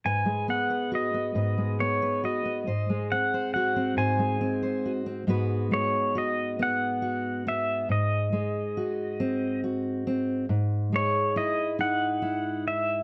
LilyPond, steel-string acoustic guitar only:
\new Staff \with { instrumentName = "Steel-string acoustic guitar" } { \time 6/8 \key gis \minor \tempo 4. = 46 << { b'8 b16 b'16 fis'16 b16 b'8 b16 b'16 fis'16 b16 | bis'8 bis16 bis'16 fis'16 bis16 bis'8 bis16 bis'16 fis'16 bis16 | <gis b fis' b'>4 fis'8 b8 fis'8 b8 | r4 fis'8 bis8 fis'8 bis8 |
r4 e'8 dis'8 e'4 | } \\ { gis,16 gis4~ gis16 gis,16 gis4~ gis16 | gis,16 gis4~ gis16 gis,16 gis4~ gis16 | gis,8 gis2~ gis8 | gis,8 gis2~ gis8 |
gis,8 gis2~ gis8 | } >> }